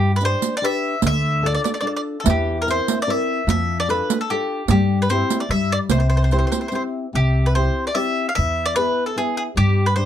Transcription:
0.00 0.33 G2 medium
0.00 0.21 G3 medium
0.00 0.11 G4 medium
0.16 0.23 B4 medium
0.21 0.53 D4 soft
0.21 0.54 G4 soft
0.21 0.54 D5 medium
0.21 riq soft
0.25 0.55 C5 medium
0.42 riq soft
0.57 0.63 D5 medium
0.62 0.94 D4 soft
0.62 0.94 G4 soft
0.62 0.95 B4 soft
0.62 1.01 E5 medium
1.02 1.56 D2 medium
1.02 1.41 D3 medium
1.02 riq soft
1.07 1.46 E5 medium
1.42 1.75 D4 soft
1.42 1.76 F4 soft
1.42 1.76 A4 soft
1.46 1.52 D5 medium
1.55 1.60 D5 medium
1.64 1.69 D5 medium
1.64 riq soft
1.74 1.77 D5 medium
1.81 2.16 D4 soft
1.81 2.17 F4 soft
1.81 2.17 A4 soft
1.81 1.84 D5 medium
1.87 1.91 D5 medium
1.97 2.00 D5 medium
2.20 2.64 E3 medium
2.20 2.26 A4 medium
2.26 2.79 E2 loud
2.26 riq medium
2.30 2.57 G4 medium
2.62 2.69 A#4 medium
2.66 2.99 C4 soft
2.66 2.99 E4 soft
2.66 2.99 A#4 soft
2.66 riq soft
2.71 2.98 C5 medium
2.88 riq soft
3.02 3.10 D5 medium
3.07 3.39 C4 soft
3.07 3.40 E4 soft
3.07 3.40 A#4 medium
3.07 3.49 E5 medium
3.47 3.99 F2 medium
3.47 3.86 F3 medium
3.47 3.77 E5 medium
3.47 riq medium
3.80 3.88 D5 medium
3.88 4.20 D4 soft
3.88 4.20 F4 soft
3.88 4.20 A4 medium
3.88 4.17 B4 medium
3.88 riq soft
4.10 riq medium
4.21 4.29 A4 medium
4.30 4.61 D4 soft
4.30 4.61 F4 soft
4.30 4.66 G4 medium
4.30 4.61 A4 medium
4.68 5.21 G2 medium
4.68 5.08 G3 medium
4.68 4.98 G4 medium
4.68 riq medium
5.02 5.09 B4 medium
5.09 5.42 C4 medium
5.09 5.42 E4 soft
5.09 5.43 G4 soft
5.09 5.40 C5 medium
5.09 riq soft
5.30 riq soft
5.40 5.49 D5 medium
5.49 5.75 G2 medium
5.49 5.89 G3 medium
5.49 5.72 E5 medium
5.72 5.77 D5 medium
5.89 6.43 C2 medium
5.89 6.30 C3 medium
5.89 5.98 C5 medium
5.89 riq medium
6.00 6.06 C5 medium
6.10 6.15 C5 medium
6.17 6.22 C5 medium
6.24 6.29 C5 medium
6.31 6.65 C4 soft
6.31 6.65 E4 soft
6.31 6.65 G4 medium
6.31 6.37 C5 soft
6.31 riq soft
6.39 6.44 C5 medium
6.47 6.51 C5 soft
6.52 6.58 C5 medium
6.52 riq soft
6.61 6.67 C5 soft
6.68 7.05 C4 soft
6.68 7.05 G4 soft
6.68 6.74 C5 medium
6.68 riq soft
6.73 7.06 E4 soft
6.73 6.82 C5 soft
7.13 7.68 C2 medium
7.13 7.53 C3 medium
7.13 7.47 G4 medium
7.46 7.55 B4 medium
7.55 7.87 C4 soft
7.55 7.88 E4 soft
7.55 7.89 G4 soft
7.55 7.84 C5 medium
7.87 7.95 D5 medium
7.95 8.28 C4 soft
7.95 8.28 E4 soft
7.95 8.28 G4 soft
7.95 8.27 E5 medium
8.29 8.35 F5 medium
8.35 8.90 E2 medium
8.35 8.75 E3 medium
8.35 8.64 E5 medium
8.66 8.75 D5 loud
8.76 9.09 B3 soft
8.76 9.09 E4 soft
8.76 9.09 G#4 soft
8.76 9.06 B4 loud
9.06 9.16 A4 medium
9.16 9.48 B3 soft
9.16 9.48 E4 soft
9.16 9.36 G#4 medium
9.16 9.49 G#4 soft
9.37 9.42 G#4 medium
9.56 10.05 G2 medium
9.56 9.95 G3 medium
9.56 9.86 G4 medium
9.86 9.95 B4 medium
9.96 10.05 D4 soft
9.96 10.05 G4 soft
9.96 10.05 C5 medium
9.96 10.05 D5 soft

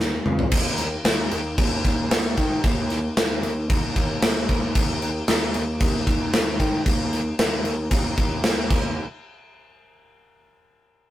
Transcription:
0.00 0.16 D#2 medium
0.00 snare medium
0.26 0.43 C#2 medium
0.26 mid tom medium
0.39 floor tom medium
0.52 0.94 D#2 loud
0.52 kick loud
0.52 crash loud
0.78 snare soft
0.78 crash medium
1.04 1.26 D#2 medium
1.04 snare loud
1.04 crash loud
1.31 1.53 D#2 medium
1.31 crash medium
1.58 1.79 D#2 medium
1.58 kick loud
1.58 crash medium
1.85 2.06 D#2 loud
1.85 kick medium
1.85 crash medium
2.10 2.32 D#2 loud
2.10 snare loud
2.10 crash loud
2.37 2.59 D#3 medium
2.37 kick medium
2.37 crash medium
2.64 3.07 D#2 loud
2.64 kick loud
2.64 crash medium
2.90 snare soft
2.90 crash medium
3.17 3.38 D#2 medium
3.17 snare loud
3.17 crash medium
3.43 3.64 D#2 loud
3.43 crash medium
3.69 3.91 D#2 medium
3.69 kick loud
3.69 crash medium
3.96 4.17 D#2 medium
3.96 kick medium
3.96 crash medium
4.22 4.44 D#2 loud
4.22 snare loud
4.22 crash loud
4.49 4.70 D#2 medium
4.49 kick medium
4.49 crash medium
4.75 5.18 D#2 loud
4.75 kick loud
4.75 crash loud
5.02 crash medium
5.28 5.50 D#2 loud
5.28 snare loud
5.28 crash loud
5.54 5.76 D#2 loud
5.54 crash medium
5.80 6.02 D#2 loud
5.80 kick loud
5.80 crash loud
6.07 6.28 D#2 loud
6.07 kick loud
6.07 crash medium
6.33 6.55 D#2 medium
6.33 snare loud
6.33 crash medium
6.60 6.81 D#3 loud
6.60 kick medium
6.60 crash medium
6.86 7.28 D#2 loud
6.86 kick loud
6.86 crash medium
7.13 snare soft
7.13 crash medium
7.39 7.60 D#2 medium
7.39 snare loud
7.39 crash medium
7.64 7.86 D#2 medium
7.64 crash medium
7.91 8.13 D#2 loud
7.91 kick loud
7.91 crash medium
8.18 8.39 D#2 loud
8.18 kick loud
8.18 crash medium
8.43 8.65 D#2 medium
8.43 snare loud
8.43 crash medium
8.70 8.95 D#2 loud
8.70 kick loud
8.70 crash loud

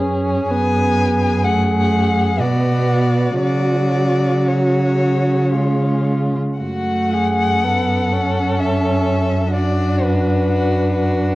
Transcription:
0.00 0.47 F#2 soft
0.00 0.52 C#4 soft
0.00 0.50 G#4 soft
0.50 2.41 F#2 soft
0.50 1.45 B3 soft
0.50 2.42 G#4 soft
0.50 1.46 G#5 medium
1.44 2.39 A3 soft
1.44 2.41 F#5 medium
2.39 3.41 B2 soft
2.39 3.39 B3 soft
2.39 3.42 F#4 soft
2.39 3.41 D5 soft
3.41 6.36 C#3 soft
3.41 5.56 F#3 soft
3.41 5.51 F#4 soft
3.41 4.50 D5 medium
4.48 6.08 C#5 soft
5.54 6.40 G#3 soft
5.54 6.38 F4 soft
6.59 11.35 F#2 soft
6.59 7.65 A3 soft
6.59 7.15 F#4 soft
6.59 8.62 F#5 medium
7.13 7.65 G#4 soft
7.63 8.14 B3 soft
7.63 9.54 A4 soft
8.13 9.54 C#4 soft
8.60 9.55 E5 soft
9.55 11.35 D4 soft
9.55 10.48 F#4 soft
9.55 10.05 D5 soft
10.03 11.35 B4 soft
10.51 10.95 F#4 soft
10.96 11.35 F#4 soft

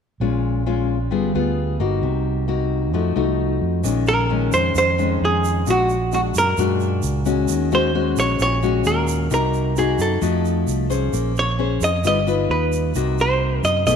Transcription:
0.20 1.12 A#1 medium
0.20 1.09 A#2 soft
0.20 0.63 G#3 soft
0.20 0.62 C#4 soft
0.20 0.63 F4 medium
0.66 0.97 G#3 soft
0.66 0.97 C#4 medium
0.66 0.97 F4 medium
1.11 1.33 G1 medium
1.11 2.00 G3 soft
1.11 1.30 B3 soft
1.11 1.30 F4 medium
1.11 1.31 G#4 medium
1.34 1.77 D2 medium
1.34 1.76 B3 medium
1.34 1.77 F4 medium
1.34 1.77 G#4 medium
1.80 2.01 G1 medium
1.80 2.44 A#3 medium
1.80 2.45 D#4 medium
1.80 2.45 F#4 medium
2.02 2.93 C2 medium
2.02 2.91 C3 soft
2.48 2.92 A#3 medium
2.48 2.92 D#4 medium
2.48 2.92 F#4 medium
2.93 3.14 F2 medium
2.93 3.82 F3 soft
2.93 3.13 A3 medium
2.93 3.13 D#4 soft
2.93 3.13 F#4 medium
3.16 3.58 C2 medium
3.16 3.80 A3 medium
3.16 3.81 D#4 medium
3.16 3.81 F#4 medium
3.62 3.83 F2 medium
3.83 4.49 A#1 medium
3.83 4.73 A#2 medium
3.83 4.26 D#3 medium
3.83 4.26 G#3 soft
3.83 4.27 C#4 medium
3.83 shaker medium
4.06 4.53 A#4 medium
4.06 shaker soft
4.30 4.94 D#3 medium
4.30 4.95 G#3 medium
4.30 4.95 C#4 medium
4.52 4.74 F2 medium
4.52 4.74 C5 medium
4.52 shaker medium
4.75 5.17 F2 medium
4.75 5.64 F2 medium
4.75 5.23 C5 loud
4.75 shaker medium
4.98 5.63 D#3 medium
4.98 5.63 G#3 medium
4.98 5.63 C#4 medium
4.98 shaker soft
5.21 5.63 F2 medium
5.25 5.70 G#4 medium
5.44 shaker medium
5.67 6.31 A#1 medium
5.67 6.55 A#2 soft
5.67 5.96 G#3 soft
5.67 5.96 D4 soft
5.67 5.96 F#4 medium
5.67 6.13 F#4 medium
5.67 shaker medium
5.89 shaker soft
6.12 6.54 G#3 medium
6.12 6.54 D4 soft
6.12 6.54 F#4 medium
6.12 6.20 F#4 medium
6.12 shaker soft
6.35 6.56 F#2 medium
6.35 7.23 A#4 medium
6.35 shaker medium
6.57 7.00 F#2 medium
6.57 7.46 A#2 medium
6.57 7.22 G#3 medium
6.57 7.22 D4 medium
6.57 7.23 F#4 medium
6.57 shaker medium
6.80 shaker soft
7.03 7.45 C#2 medium
7.03 shaker medium
7.25 7.71 G#3 medium
7.25 7.71 C#4 medium
7.25 7.71 F#4 medium
7.25 shaker medium
7.48 8.13 D#2 medium
7.48 8.37 D#3 medium
7.48 shaker medium
7.71 7.91 G#3 medium
7.71 7.91 C#4 medium
7.71 7.91 F#4 medium
7.71 8.19 C5 medium
7.71 shaker soft
7.95 8.59 G#3 medium
7.95 8.59 C#4 medium
7.95 8.59 F#4 medium
8.17 8.38 A#1 medium
8.17 8.41 C#5 medium
8.17 shaker medium
8.39 8.81 A#1 medium
8.39 9.28 A#2 medium
8.39 8.86 C#5 loud
8.39 shaker medium
8.63 9.27 G#3 medium
8.63 9.27 C#4 medium
8.63 9.27 F#4 medium
8.63 shaker soft
8.85 9.27 D#2 medium
8.85 9.33 A#4 medium
8.85 shaker medium
9.08 shaker medium
9.31 9.95 C2 medium
9.31 10.19 C3 medium
9.31 9.72 A#3 medium
9.31 9.73 D#4 medium
9.31 9.73 F#4 medium
9.31 9.78 A#4 medium
9.31 shaker medium
9.54 shaker soft
9.76 10.18 A#3 medium
9.76 10.19 D#4 medium
9.76 10.19 F#4 medium
9.76 10.01 G#4 medium
9.76 shaker medium
9.98 10.20 F#2 medium
9.98 10.87 A4 medium
9.98 shaker medium
10.22 10.64 F2 medium
10.22 11.10 F3 medium
10.22 10.86 A3 medium
10.22 10.86 D#4 medium
10.22 10.86 F#4 medium
10.22 shaker medium
10.45 shaker soft
10.67 11.10 C2 medium
10.67 shaker medium
10.90 11.32 C#4 medium
10.90 11.32 G#4 medium
10.90 11.32 C5 medium
10.90 shaker medium
11.13 11.77 A#1 medium
11.13 12.02 A#3 soft
11.13 shaker medium
11.36 11.84 C#5 medium
11.36 shaker soft
11.59 11.89 C#4 medium
11.59 11.89 G#4 medium
11.59 11.90 C5 medium
11.81 12.02 F2 medium
11.81 12.06 D#5 medium
11.81 shaker medium
12.04 12.46 G1 medium
12.04 12.93 G3 medium
12.04 12.17 D#4 medium
12.04 12.18 F4 medium
12.04 12.18 B4 medium
12.04 12.51 D#5 medium
12.04 shaker medium
12.27 12.91 D#4 medium
12.27 12.92 F4 medium
12.27 12.92 B4 medium
12.27 shaker soft
12.49 12.91 D#2 medium
12.49 12.93 B4 medium
12.73 shaker medium
12.95 13.59 C2 medium
12.95 13.84 C3 medium
12.95 13.83 A#3 soft
12.95 13.83 D#4 soft
12.95 13.83 F#4 medium
12.95 shaker medium
13.18 13.64 C5 medium
13.18 shaker soft
13.63 13.84 F#2 medium
13.63 13.86 D#5 medium
13.63 shaker medium
13.86 13.96 B1 medium
13.86 13.96 B2 medium
13.86 13.96 A3 medium
13.86 13.96 D#4 medium
13.86 13.96 G#4 medium
13.86 13.96 D#5 medium
13.86 shaker medium

